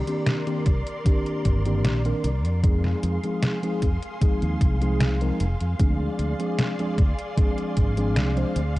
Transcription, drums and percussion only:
0, 0, Header, 1, 2, 480
1, 0, Start_track
1, 0, Tempo, 789474
1, 1604, Time_signature, 4, 2, 24, 8
1, 5346, End_track
2, 0, Start_track
2, 0, Title_t, "Drums"
2, 45, Note_on_c, 9, 42, 52
2, 106, Note_off_c, 9, 42, 0
2, 161, Note_on_c, 9, 38, 113
2, 161, Note_on_c, 9, 42, 80
2, 222, Note_off_c, 9, 38, 0
2, 222, Note_off_c, 9, 42, 0
2, 286, Note_on_c, 9, 42, 38
2, 346, Note_off_c, 9, 42, 0
2, 401, Note_on_c, 9, 42, 78
2, 404, Note_on_c, 9, 36, 100
2, 462, Note_off_c, 9, 42, 0
2, 464, Note_off_c, 9, 36, 0
2, 527, Note_on_c, 9, 42, 54
2, 588, Note_off_c, 9, 42, 0
2, 643, Note_on_c, 9, 36, 107
2, 643, Note_on_c, 9, 42, 83
2, 704, Note_off_c, 9, 36, 0
2, 704, Note_off_c, 9, 42, 0
2, 767, Note_on_c, 9, 42, 37
2, 828, Note_off_c, 9, 42, 0
2, 882, Note_on_c, 9, 42, 75
2, 883, Note_on_c, 9, 36, 61
2, 942, Note_off_c, 9, 42, 0
2, 944, Note_off_c, 9, 36, 0
2, 1006, Note_on_c, 9, 42, 54
2, 1067, Note_off_c, 9, 42, 0
2, 1123, Note_on_c, 9, 38, 111
2, 1123, Note_on_c, 9, 42, 75
2, 1183, Note_off_c, 9, 38, 0
2, 1183, Note_off_c, 9, 42, 0
2, 1247, Note_on_c, 9, 42, 37
2, 1308, Note_off_c, 9, 42, 0
2, 1363, Note_on_c, 9, 42, 76
2, 1424, Note_off_c, 9, 42, 0
2, 1489, Note_on_c, 9, 42, 55
2, 1549, Note_off_c, 9, 42, 0
2, 1603, Note_on_c, 9, 36, 120
2, 1603, Note_on_c, 9, 42, 83
2, 1663, Note_off_c, 9, 42, 0
2, 1664, Note_off_c, 9, 36, 0
2, 1727, Note_on_c, 9, 38, 38
2, 1788, Note_off_c, 9, 38, 0
2, 1843, Note_on_c, 9, 42, 78
2, 1904, Note_off_c, 9, 42, 0
2, 1967, Note_on_c, 9, 42, 52
2, 2028, Note_off_c, 9, 42, 0
2, 2083, Note_on_c, 9, 38, 120
2, 2083, Note_on_c, 9, 42, 79
2, 2143, Note_off_c, 9, 38, 0
2, 2143, Note_off_c, 9, 42, 0
2, 2208, Note_on_c, 9, 42, 37
2, 2269, Note_off_c, 9, 42, 0
2, 2323, Note_on_c, 9, 36, 64
2, 2323, Note_on_c, 9, 42, 76
2, 2384, Note_off_c, 9, 36, 0
2, 2384, Note_off_c, 9, 42, 0
2, 2447, Note_on_c, 9, 42, 56
2, 2508, Note_off_c, 9, 42, 0
2, 2563, Note_on_c, 9, 36, 109
2, 2563, Note_on_c, 9, 42, 78
2, 2624, Note_off_c, 9, 36, 0
2, 2624, Note_off_c, 9, 42, 0
2, 2688, Note_on_c, 9, 42, 37
2, 2749, Note_off_c, 9, 42, 0
2, 2803, Note_on_c, 9, 36, 110
2, 2804, Note_on_c, 9, 42, 83
2, 2864, Note_off_c, 9, 36, 0
2, 2864, Note_off_c, 9, 42, 0
2, 2928, Note_on_c, 9, 42, 56
2, 2989, Note_off_c, 9, 42, 0
2, 3043, Note_on_c, 9, 38, 117
2, 3043, Note_on_c, 9, 42, 81
2, 3104, Note_off_c, 9, 38, 0
2, 3104, Note_off_c, 9, 42, 0
2, 3168, Note_on_c, 9, 42, 37
2, 3229, Note_off_c, 9, 42, 0
2, 3283, Note_on_c, 9, 42, 75
2, 3344, Note_off_c, 9, 42, 0
2, 3407, Note_on_c, 9, 42, 55
2, 3468, Note_off_c, 9, 42, 0
2, 3523, Note_on_c, 9, 42, 78
2, 3524, Note_on_c, 9, 36, 126
2, 3584, Note_off_c, 9, 42, 0
2, 3585, Note_off_c, 9, 36, 0
2, 3763, Note_on_c, 9, 42, 73
2, 3824, Note_off_c, 9, 42, 0
2, 3889, Note_on_c, 9, 42, 52
2, 3950, Note_off_c, 9, 42, 0
2, 4004, Note_on_c, 9, 38, 121
2, 4004, Note_on_c, 9, 42, 77
2, 4065, Note_off_c, 9, 38, 0
2, 4065, Note_off_c, 9, 42, 0
2, 4129, Note_on_c, 9, 42, 39
2, 4190, Note_off_c, 9, 42, 0
2, 4244, Note_on_c, 9, 36, 116
2, 4244, Note_on_c, 9, 42, 75
2, 4305, Note_off_c, 9, 36, 0
2, 4305, Note_off_c, 9, 42, 0
2, 4369, Note_on_c, 9, 42, 52
2, 4430, Note_off_c, 9, 42, 0
2, 4484, Note_on_c, 9, 36, 115
2, 4484, Note_on_c, 9, 42, 80
2, 4544, Note_off_c, 9, 42, 0
2, 4545, Note_off_c, 9, 36, 0
2, 4608, Note_on_c, 9, 42, 38
2, 4668, Note_off_c, 9, 42, 0
2, 4722, Note_on_c, 9, 42, 76
2, 4724, Note_on_c, 9, 36, 66
2, 4783, Note_off_c, 9, 42, 0
2, 4785, Note_off_c, 9, 36, 0
2, 4847, Note_on_c, 9, 42, 54
2, 4908, Note_off_c, 9, 42, 0
2, 4963, Note_on_c, 9, 38, 118
2, 4963, Note_on_c, 9, 42, 76
2, 5023, Note_off_c, 9, 38, 0
2, 5023, Note_off_c, 9, 42, 0
2, 5088, Note_on_c, 9, 42, 37
2, 5149, Note_off_c, 9, 42, 0
2, 5204, Note_on_c, 9, 42, 76
2, 5265, Note_off_c, 9, 42, 0
2, 5346, End_track
0, 0, End_of_file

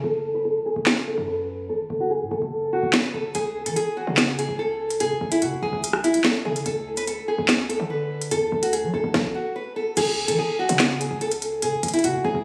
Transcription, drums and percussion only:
0, 0, Header, 1, 2, 480
1, 0, Start_track
1, 0, Tempo, 413793
1, 45, Time_signature, 4, 2, 24, 8
1, 14433, End_track
2, 0, Start_track
2, 0, Title_t, "Drums"
2, 996, Note_on_c, 9, 39, 91
2, 1005, Note_on_c, 9, 38, 116
2, 1112, Note_off_c, 9, 39, 0
2, 1121, Note_off_c, 9, 38, 0
2, 3396, Note_on_c, 9, 39, 82
2, 3405, Note_on_c, 9, 38, 104
2, 3512, Note_off_c, 9, 39, 0
2, 3521, Note_off_c, 9, 38, 0
2, 3884, Note_on_c, 9, 42, 91
2, 4000, Note_off_c, 9, 42, 0
2, 4247, Note_on_c, 9, 42, 86
2, 4363, Note_off_c, 9, 42, 0
2, 4367, Note_on_c, 9, 42, 79
2, 4483, Note_off_c, 9, 42, 0
2, 4837, Note_on_c, 9, 39, 91
2, 4846, Note_on_c, 9, 38, 113
2, 4852, Note_on_c, 9, 42, 74
2, 4953, Note_off_c, 9, 39, 0
2, 4962, Note_off_c, 9, 38, 0
2, 4968, Note_off_c, 9, 42, 0
2, 5090, Note_on_c, 9, 42, 75
2, 5206, Note_off_c, 9, 42, 0
2, 5690, Note_on_c, 9, 42, 67
2, 5803, Note_off_c, 9, 42, 0
2, 5803, Note_on_c, 9, 42, 91
2, 5919, Note_off_c, 9, 42, 0
2, 6167, Note_on_c, 9, 42, 85
2, 6283, Note_off_c, 9, 42, 0
2, 6287, Note_on_c, 9, 42, 79
2, 6403, Note_off_c, 9, 42, 0
2, 6772, Note_on_c, 9, 42, 79
2, 6883, Note_on_c, 9, 37, 95
2, 6888, Note_off_c, 9, 42, 0
2, 6999, Note_off_c, 9, 37, 0
2, 7009, Note_on_c, 9, 42, 68
2, 7123, Note_off_c, 9, 42, 0
2, 7123, Note_on_c, 9, 42, 80
2, 7236, Note_on_c, 9, 39, 80
2, 7239, Note_off_c, 9, 42, 0
2, 7245, Note_on_c, 9, 38, 105
2, 7352, Note_off_c, 9, 39, 0
2, 7361, Note_off_c, 9, 38, 0
2, 7609, Note_on_c, 9, 42, 67
2, 7723, Note_off_c, 9, 42, 0
2, 7723, Note_on_c, 9, 42, 89
2, 7839, Note_off_c, 9, 42, 0
2, 8087, Note_on_c, 9, 42, 84
2, 8203, Note_off_c, 9, 42, 0
2, 8207, Note_on_c, 9, 42, 77
2, 8323, Note_off_c, 9, 42, 0
2, 8676, Note_on_c, 9, 39, 88
2, 8685, Note_on_c, 9, 38, 112
2, 8692, Note_on_c, 9, 42, 73
2, 8792, Note_off_c, 9, 39, 0
2, 8801, Note_off_c, 9, 38, 0
2, 8808, Note_off_c, 9, 42, 0
2, 8929, Note_on_c, 9, 42, 72
2, 9045, Note_off_c, 9, 42, 0
2, 9529, Note_on_c, 9, 42, 65
2, 9644, Note_off_c, 9, 42, 0
2, 9644, Note_on_c, 9, 42, 89
2, 9760, Note_off_c, 9, 42, 0
2, 10008, Note_on_c, 9, 42, 85
2, 10124, Note_off_c, 9, 42, 0
2, 10127, Note_on_c, 9, 42, 79
2, 10243, Note_off_c, 9, 42, 0
2, 10605, Note_on_c, 9, 36, 108
2, 10605, Note_on_c, 9, 38, 91
2, 10721, Note_off_c, 9, 36, 0
2, 10721, Note_off_c, 9, 38, 0
2, 11564, Note_on_c, 9, 42, 94
2, 11566, Note_on_c, 9, 49, 102
2, 11680, Note_off_c, 9, 42, 0
2, 11682, Note_off_c, 9, 49, 0
2, 11928, Note_on_c, 9, 42, 86
2, 12044, Note_off_c, 9, 42, 0
2, 12402, Note_on_c, 9, 42, 70
2, 12517, Note_on_c, 9, 39, 91
2, 12518, Note_off_c, 9, 42, 0
2, 12526, Note_on_c, 9, 38, 115
2, 12533, Note_on_c, 9, 42, 83
2, 12633, Note_off_c, 9, 39, 0
2, 12642, Note_off_c, 9, 38, 0
2, 12649, Note_off_c, 9, 42, 0
2, 12770, Note_on_c, 9, 42, 75
2, 12886, Note_off_c, 9, 42, 0
2, 13005, Note_on_c, 9, 42, 47
2, 13121, Note_off_c, 9, 42, 0
2, 13125, Note_on_c, 9, 42, 83
2, 13241, Note_off_c, 9, 42, 0
2, 13248, Note_on_c, 9, 42, 87
2, 13364, Note_off_c, 9, 42, 0
2, 13483, Note_on_c, 9, 42, 92
2, 13599, Note_off_c, 9, 42, 0
2, 13725, Note_on_c, 9, 42, 76
2, 13785, Note_off_c, 9, 42, 0
2, 13785, Note_on_c, 9, 42, 65
2, 13845, Note_off_c, 9, 42, 0
2, 13845, Note_on_c, 9, 42, 53
2, 13905, Note_off_c, 9, 42, 0
2, 13905, Note_on_c, 9, 42, 43
2, 13967, Note_off_c, 9, 42, 0
2, 13967, Note_on_c, 9, 42, 83
2, 14083, Note_off_c, 9, 42, 0
2, 14433, End_track
0, 0, End_of_file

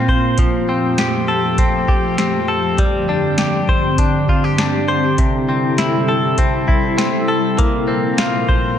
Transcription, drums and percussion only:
0, 0, Header, 1, 2, 480
1, 0, Start_track
1, 0, Tempo, 600000
1, 306, Time_signature, 4, 2, 24, 8
1, 7030, End_track
2, 0, Start_track
2, 0, Title_t, "Drums"
2, 65, Note_on_c, 9, 36, 71
2, 145, Note_off_c, 9, 36, 0
2, 301, Note_on_c, 9, 42, 65
2, 304, Note_on_c, 9, 36, 100
2, 381, Note_off_c, 9, 42, 0
2, 384, Note_off_c, 9, 36, 0
2, 784, Note_on_c, 9, 42, 59
2, 786, Note_on_c, 9, 38, 96
2, 864, Note_off_c, 9, 42, 0
2, 866, Note_off_c, 9, 38, 0
2, 1264, Note_on_c, 9, 36, 80
2, 1265, Note_on_c, 9, 42, 65
2, 1344, Note_off_c, 9, 36, 0
2, 1345, Note_off_c, 9, 42, 0
2, 1506, Note_on_c, 9, 36, 80
2, 1586, Note_off_c, 9, 36, 0
2, 1745, Note_on_c, 9, 38, 101
2, 1746, Note_on_c, 9, 42, 65
2, 1825, Note_off_c, 9, 38, 0
2, 1826, Note_off_c, 9, 42, 0
2, 2225, Note_on_c, 9, 36, 101
2, 2227, Note_on_c, 9, 42, 64
2, 2305, Note_off_c, 9, 36, 0
2, 2307, Note_off_c, 9, 42, 0
2, 2702, Note_on_c, 9, 42, 64
2, 2704, Note_on_c, 9, 38, 97
2, 2782, Note_off_c, 9, 42, 0
2, 2784, Note_off_c, 9, 38, 0
2, 2946, Note_on_c, 9, 36, 77
2, 3026, Note_off_c, 9, 36, 0
2, 3184, Note_on_c, 9, 36, 78
2, 3185, Note_on_c, 9, 42, 66
2, 3264, Note_off_c, 9, 36, 0
2, 3265, Note_off_c, 9, 42, 0
2, 3426, Note_on_c, 9, 36, 81
2, 3506, Note_off_c, 9, 36, 0
2, 3667, Note_on_c, 9, 38, 100
2, 3668, Note_on_c, 9, 42, 70
2, 3747, Note_off_c, 9, 38, 0
2, 3748, Note_off_c, 9, 42, 0
2, 4145, Note_on_c, 9, 36, 95
2, 4145, Note_on_c, 9, 42, 61
2, 4225, Note_off_c, 9, 36, 0
2, 4225, Note_off_c, 9, 42, 0
2, 4625, Note_on_c, 9, 42, 64
2, 4627, Note_on_c, 9, 38, 100
2, 4705, Note_off_c, 9, 42, 0
2, 4707, Note_off_c, 9, 38, 0
2, 5102, Note_on_c, 9, 42, 65
2, 5104, Note_on_c, 9, 36, 69
2, 5182, Note_off_c, 9, 42, 0
2, 5184, Note_off_c, 9, 36, 0
2, 5347, Note_on_c, 9, 36, 78
2, 5427, Note_off_c, 9, 36, 0
2, 5587, Note_on_c, 9, 38, 102
2, 5588, Note_on_c, 9, 42, 67
2, 5667, Note_off_c, 9, 38, 0
2, 5668, Note_off_c, 9, 42, 0
2, 6068, Note_on_c, 9, 36, 101
2, 6068, Note_on_c, 9, 42, 65
2, 6148, Note_off_c, 9, 36, 0
2, 6148, Note_off_c, 9, 42, 0
2, 6545, Note_on_c, 9, 42, 67
2, 6546, Note_on_c, 9, 38, 101
2, 6625, Note_off_c, 9, 42, 0
2, 6626, Note_off_c, 9, 38, 0
2, 6788, Note_on_c, 9, 36, 80
2, 6868, Note_off_c, 9, 36, 0
2, 7030, End_track
0, 0, End_of_file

